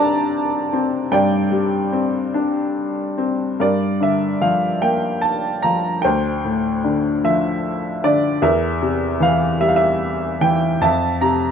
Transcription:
0.00 1.08 C3 medium
0.00 0.69 G3 medium
0.00 0.72 C4 soft
0.00 1.48 D4 medium
0.00 1.13 D5 medium
0.00 1.12 G5 medium
0.00 1.16 A5 medium
0.00 3.61 A#5 medium
0.73 1.91 C4 soft
1.12 3.55 G2 medium
1.12 3.14 D5 medium
1.12 3.13 G5 medium
1.51 3.13 G3 soft
1.93 3.16 C4 soft
2.34 3.55 D4 soft
3.18 3.58 C4 soft
3.60 6.00 G2 soft
3.60 4.79 A#4 soft
3.60 3.99 D5 medium
4.00 5.60 D3 soft
4.00 4.44 E5 medium
4.41 5.63 F3 soft
4.41 4.80 F5 medium
4.82 6.00 A#3 soft
4.82 5.20 G5 medium
5.21 5.64 A5 medium
5.62 6.03 F3 soft
5.62 6.00 A#5 medium
6.02 8.39 D2 medium
6.02 7.21 C5 soft
6.02 6.79 G5 medium
6.44 8.00 A2 soft
6.84 8.03 D3 soft
7.24 8.39 F3 soft
7.24 8.00 E5 medium
8.04 8.42 D3 soft
8.04 8.44 D5 medium
8.42 10.77 E2 medium
8.42 9.57 A#4 soft
8.42 9.23 E5 medium
8.82 10.37 C3 soft
9.20 10.40 E3 soft
9.20 9.63 F5 medium
9.60 10.78 G3 soft
9.60 9.68 E5 medium
9.68 9.75 F5 medium
9.76 10.44 E5 medium
10.41 10.80 E3 soft
10.41 10.83 G5 medium
10.81 11.52 F2 medium
10.81 11.52 E5 medium
10.81 11.20 A5 medium
11.21 11.52 C3 soft
11.21 11.52 A#5 medium

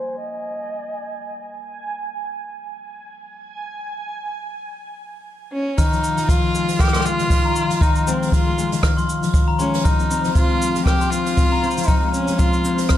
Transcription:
0.00 0.18 C5 medium
0.00 5.79 G#5 medium
0.18 1.42 D#5 medium
5.52 5.79 C#4 medium
5.78 7.18 D#3 medium
5.78 6.30 D#4 medium
5.78 5.86 F6 medium
5.78 kick loud
5.78 open hi-hat medium
5.78 shaker medium
5.92 6.16 F3 medium
5.92 shaker soft
6.04 shaker medium
6.18 7.23 F3 medium
6.18 open hi-hat medium
6.18 shaker medium
6.29 6.81 F4 loud
6.29 kick loud
6.29 open hi-hat medium
6.29 shaker medium
6.54 6.93 G#3 loud
6.54 shaker medium
6.68 open hi-hat medium
6.68 shaker soft
6.79 7.07 G4 loud
6.79 6.88 F6 medium
6.79 kick loud
6.79 cross-stick soft
6.79 open hi-hat medium
6.79 shaker medium
6.84 cross-stick soft
6.87 cross-stick soft
6.93 7.04 G#3 medium
6.93 7.05 C6 medium
6.93 cross-stick medium
6.93 shaker soft
6.96 cross-stick medium
7.01 cross-stick medium
7.05 7.23 G#3 loud
7.05 7.83 F4 loud
7.05 shaker medium
7.19 7.29 D#3 medium
7.19 open hi-hat medium
7.19 shaker soft
7.30 8.71 D#3 medium
7.30 kick loud
7.30 open hi-hat medium
7.30 shaker medium
7.45 7.69 F3 medium
7.45 7.56 A#5 medium
7.56 7.70 C6 medium
7.56 shaker medium
7.70 8.75 F3 medium
7.70 open hi-hat medium
7.70 shaker soft
7.81 8.08 D#4 medium
7.81 7.90 F6 medium
7.81 kick loud
7.81 open hi-hat medium
7.81 shaker medium
7.95 shaker soft
8.07 8.45 G#3 loud
8.07 8.34 C4 medium
8.07 shaker loud
8.22 open hi-hat medium
8.22 shaker medium
8.32 8.83 F4 medium
8.32 kick medium
8.32 open hi-hat medium
8.32 shaker medium
8.47 8.57 G#3 medium
8.58 8.75 G#3 loud
8.58 shaker medium
8.72 8.82 D#3 medium
8.72 open hi-hat medium
8.72 shaker medium
8.83 9.90 D#3 medium
8.83 8.91 F6 medium
8.83 kick loud
8.83 cross-stick medium
8.83 open hi-hat medium
8.83 shaker medium
8.97 9.22 F3 medium
8.97 9.08 C6 medium
8.97 shaker soft
9.09 shaker medium
9.23 9.90 F3 medium
9.23 open hi-hat medium
9.23 shaker medium
9.34 kick loud
9.34 open hi-hat medium
9.34 shaker medium
9.48 9.59 A#5 medium
9.59 9.90 G#3 loud
9.59 9.86 C#4 medium
9.59 9.73 C6 medium
9.59 shaker medium
9.74 open hi-hat medium
9.74 shaker soft
9.84 10.34 D#4 medium
9.84 9.93 F6 medium
9.84 kick loud
9.84 open hi-hat soft
9.84 shaker medium
9.99 10.10 C4 medium
9.99 shaker soft
10.10 11.12 C4 loud
10.10 shaker medium
10.25 10.35 F3 medium
10.25 open hi-hat medium
10.25 shaker soft
10.35 11.76 F3 medium
10.35 10.83 F4 loud
10.35 kick loud
10.35 open hi-hat medium
10.35 shaker medium
10.50 10.74 G#3 medium
10.62 shaker medium
10.75 12.01 G#3 medium
10.75 open hi-hat medium
10.75 shaker medium
10.85 11.12 G4 loud
10.85 10.95 F6 medium
10.85 kick loud
10.85 cross-stick medium
10.85 open hi-hat soft
10.85 shaker medium
10.89 open hi-hat soft
10.92 open hi-hat soft
10.95 open hi-hat soft
10.98 11.12 C6 medium
10.98 open hi-hat soft
10.98 shaker medium
11.10 11.51 C4 loud
11.10 11.89 F4 loud
11.10 shaker medium
11.26 open hi-hat medium
11.26 shaker soft
11.37 kick loud
11.37 open hi-hat medium
11.37 shaker medium
11.52 11.62 C4 medium
11.52 11.62 A#5 medium
11.63 12.64 C4 loud
11.63 11.77 C6 medium
11.63 shaker soft
11.71 shaker soft
11.77 11.87 F3 medium
11.77 open hi-hat medium
11.77 shaker medium
11.83 12.12 D#4 medium
11.83 shaker medium
11.88 12.98 F3 medium
11.88 11.97 F6 medium
11.88 kick loud
11.88 open hi-hat medium
11.88 shaker medium
12.02 12.27 G#3 medium
12.13 12.40 C#4 medium
12.13 shaker medium
12.28 12.98 G#3 medium
12.28 open hi-hat medium
12.28 shaker medium
12.38 12.89 F4 medium
12.38 kick loud
12.38 open hi-hat medium
12.38 shaker medium
12.53 shaker soft
12.65 12.98 C4 loud
12.65 shaker medium
12.78 open hi-hat medium
12.78 shaker medium
12.81 open hi-hat medium
12.86 12.98 F6 medium
12.86 cross-stick medium
12.86 open hi-hat soft
12.89 kick loud
12.89 open hi-hat medium
12.89 shaker medium
12.94 open hi-hat soft

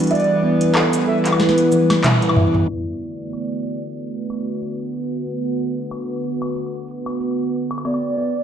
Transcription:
0.00 2.65 E3 medium
0.00 2.65 G3 medium
0.00 2.65 B3 medium
0.00 2.65 B4 medium
0.00 closed hi-hat soft
0.07 closed hi-hat soft
0.11 2.66 E4 medium
0.11 0.71 D5 medium
0.11 0.19 E5 loud
0.11 closed hi-hat soft
0.15 closed hi-hat soft
0.20 closed hi-hat soft
0.24 closed hi-hat soft
0.43 0.60 B3 medium
0.61 closed hi-hat medium
0.75 0.83 A4 medium
0.75 clap loud
0.75 high woodblock medium
0.93 closed hi-hat medium
0.93 cabasa medium
1.07 1.15 A4 medium
1.07 1.21 E5 loud
1.25 clap medium
1.25 closed hi-hat medium
1.33 high woodblock medium
1.40 1.53 E4 medium
1.40 2.00 B4 loud
1.40 snare medium
1.49 snare medium
1.58 closed hi-hat medium
1.72 1.85 E3 medium
1.72 cabasa medium
1.90 snare medium
1.90 high woodblock medium
2.04 2.18 E5 medium
2.04 clap loud
2.04 closed hi-hat medium
2.04 mid tom medium
2.22 2.33 E4 medium
2.22 closed hi-hat soft
2.29 high woodblock medium
2.37 2.54 E5 medium
2.37 mid tom loud
2.55 mid tom medium
2.69 8.44 D3 medium
2.69 7.81 A3 medium
2.69 8.44 B3 medium
2.69 7.81 F#4 medium
2.69 7.81 B4 medium
2.69 4.91 D5 loud
2.69 high woodblock medium
3.33 closed hi-hat medium
3.33 high woodblock medium
3.61 closed hi-hat soft
3.66 closed hi-hat medium
4.16 closed hi-hat soft
4.30 closed hi-hat medium
4.30 high woodblock soft
4.48 closed hi-hat soft
4.62 closed hi-hat medium
4.80 closed hi-hat soft
4.95 closed hi-hat medium
5.13 closed hi-hat soft
5.27 closed hi-hat medium
5.45 closed hi-hat soft
5.77 closed hi-hat soft
5.91 closed hi-hat medium
5.91 high woodblock soft
6.10 closed hi-hat soft
6.24 closed hi-hat medium
6.42 closed hi-hat soft
6.42 high woodblock medium
6.56 closed hi-hat medium
6.74 closed hi-hat soft
6.88 closed hi-hat medium
7.06 closed hi-hat soft
7.06 high woodblock medium
7.21 closed hi-hat medium
7.39 closed hi-hat soft
7.71 closed hi-hat soft
7.71 high woodblock soft
7.78 high woodblock soft
7.85 7.93 B3 medium
7.85 8.44 B4 medium
7.85 8.44 D5 loud
7.85 8.44 G5 medium
7.85 closed hi-hat medium
7.85 high woodblock soft
7.94 closed hi-hat soft
7.94 high woodblock soft
8.17 8.25 B3 medium
8.35 closed hi-hat soft

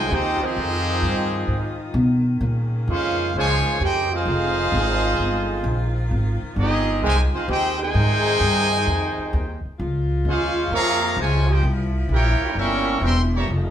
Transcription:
0.00 4.22 D#3 medium
0.00 2.24 F3 medium
0.00 2.24 D#4 medium
0.00 2.24 F4 medium
0.11 0.40 D#2 loud
0.11 0.41 C4 medium
0.11 0.43 D#4 medium
0.11 0.42 D#4 medium
0.11 0.42 G4 medium
0.11 0.42 G#4 medium
0.11 0.42 C5 medium
0.11 0.43 G5 loud
0.42 1.81 D#3 loud
0.42 1.80 F3 medium
0.42 1.80 C4 medium
0.42 1.81 D#4 medium
0.42 1.81 G4 medium
0.42 1.81 G#4 medium
0.42 1.81 C5 loud
0.42 muted upright bass stroke soft
0.57 1.02 F2 loud
1.02 1.48 G2 loud
1.48 1.93 G#2 medium
1.94 2.39 B2 loud
2.41 2.86 A#2 loud
2.41 4.24 C#3 medium
2.41 4.24 A#3 medium
2.41 4.24 C#4 medium
2.87 3.32 F2 loud
2.87 3.31 G#3 medium
2.87 3.31 C#4 medium
2.87 3.32 C#4 medium
2.87 3.31 F4 medium
2.87 3.32 G#4 medium
2.87 3.31 C5 medium
2.87 3.32 F5 loud
3.34 3.63 C#2 medium
3.34 3.78 C#3 loud
3.34 3.78 F3 loud
3.34 3.78 G#3 loud
3.34 3.78 F4 medium
3.34 3.78 C5 loud
3.34 3.78 C#5 loud
3.34 3.78 G#5 loud
3.65 muted upright bass stroke soft
3.80 4.25 F2 loud
3.80 4.10 D#4 medium
3.80 4.10 G4 medium
3.80 4.10 G#4 medium
3.80 4.10 C5 medium
3.80 4.10 G5 loud
4.13 5.96 G#3 loud
4.13 5.96 C4 medium
4.13 5.97 D#4 medium
4.13 5.96 F4 medium
4.13 5.97 G#4 loud
4.13 5.97 C5 medium
4.13 5.97 F5 loud
4.25 4.70 F1 medium
4.25 9.62 D#3 medium
4.25 9.62 F3 medium
4.25 7.00 F4 medium
4.72 5.17 G#1 loud
5.18 5.63 G1 medium
5.64 6.09 A#1 loud
6.11 6.40 G#1 loud
6.42 muted upright bass stroke soft
6.56 7.01 G1 loud
6.56 6.99 G#3 medium
6.56 6.99 C4 medium
6.56 7.01 C4 medium
6.56 6.99 D#4 medium
6.56 7.01 G4 medium
6.56 7.01 G#4 medium
6.56 7.00 D#5 loud
7.02 7.32 C2 medium
7.02 7.17 C3 loud
7.02 7.17 D#3 medium
7.02 7.17 G#3 loud
7.02 9.62 D#4 medium
7.02 7.18 D#4 medium
7.02 7.18 G4 loud
7.02 7.18 C5 medium
7.02 7.18 G#5 loud
7.33 7.47 G#3 medium
7.33 7.47 C4 medium
7.33 7.48 D#4 medium
7.33 7.47 F4 medium
7.33 7.48 G#4 medium
7.33 7.48 C5 medium
7.33 7.48 F5 medium
7.33 muted upright bass stroke soft
7.48 7.93 D#2 loud
7.48 7.78 C4 medium
7.48 7.77 D#4 medium
7.48 7.78 D#4 medium
7.48 7.78 G4 medium
7.48 7.78 G#4 medium
7.48 7.78 C5 medium
7.48 7.78 G5 loud
7.79 9.60 C3 loud
7.79 9.60 D#3 loud
7.79 9.61 D#4 loud
7.79 9.60 G#4 loud
7.79 9.61 C5 loud
7.79 9.61 G5 loud
7.79 9.61 G#5 loud
7.95 8.39 G#2 loud
8.40 8.85 G2 loud
8.87 9.16 F2 medium
9.18 muted upright bass stroke soft
9.33 9.62 D#2 loud
9.65 muted upright bass stroke soft
9.79 10.24 C#2 loud
9.79 13.44 F3 medium
9.79 11.61 F4 medium
10.25 10.70 D#2 medium
10.25 10.69 G#3 medium
10.25 10.69 C#4 medium
10.25 10.70 C#4 medium
10.25 10.69 F4 medium
10.29 10.70 G#4 medium
10.29 10.70 C5 medium
10.29 10.70 F5 loud
10.71 11.16 F2 medium
10.71 11.15 C3 loud
10.71 11.15 F3 loud
10.71 11.15 A#3 loud
10.71 11.15 G#4 medium
10.71 11.15 C#5 loud
10.71 11.15 F5 loud
10.71 11.15 A#5 loud
11.17 11.62 C#2 loud
11.17 11.49 C3 medium
11.17 11.49 F3 medium
11.17 11.49 G#3 medium
11.17 11.50 F4 medium
11.17 11.49 C5 medium
11.17 11.50 C#5 medium
11.17 11.50 G#5 loud
11.49 11.64 D#4 medium
11.49 11.64 G4 medium
11.49 11.64 G#4 medium
11.49 11.64 C5 medium
11.49 11.64 G5 medium
11.63 12.08 C2 loud
11.63 13.46 A#3 medium
11.63 13.46 E4 medium
12.09 12.38 A#1 loud
12.09 12.54 A#3 medium
12.09 12.54 E4 medium
12.09 12.54 G4 medium
12.09 12.54 G5 medium
12.13 12.54 E4 medium
12.13 12.54 A#4 medium
12.13 12.54 C#5 medium
12.41 muted upright bass stroke soft
12.55 13.00 G1 medium
12.55 13.01 G3 loud
12.55 13.02 A#3 loud
12.55 13.02 C#4 loud
12.55 13.03 A#4 medium
12.55 13.03 E5 medium
12.55 13.03 G5 medium
12.55 13.03 C#6 loud
13.01 13.46 E1 loud
13.01 13.16 E3 medium
13.01 13.16 G3 medium
13.01 13.16 C4 medium
13.01 13.18 A#4 medium
13.01 13.18 E5 medium
13.01 13.18 G5 medium
13.01 13.18 C6 loud
13.34 13.48 E3 medium
13.34 13.47 G3 medium
13.34 13.48 A#3 medium
13.34 13.48 G4 medium
13.34 13.48 C#5 medium
13.34 13.48 E5 medium
13.34 13.48 A#5 medium
13.48 13.70 F1 loud
13.48 13.70 F3 medium
13.48 13.70 G#3 medium
13.48 13.70 D#4 medium
13.48 13.70 F4 medium

